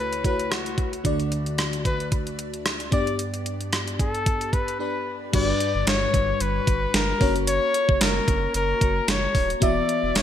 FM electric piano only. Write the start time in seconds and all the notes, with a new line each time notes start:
Already playing: C#2 C#3 A3 E4 F#4 C#5
0.24 A3 E4 F#4 C#5
1.04 D2 D3 A3 D4 F#4 D5
2.91 G2 B3 D4 G4 D5
4.79 B3 D4 G4 D5
5.33 G2 G3 D4 F#4 B4
7.20 A#3 C#4 F#4 C#5
9.60 E3 B3 E4 F#4 E5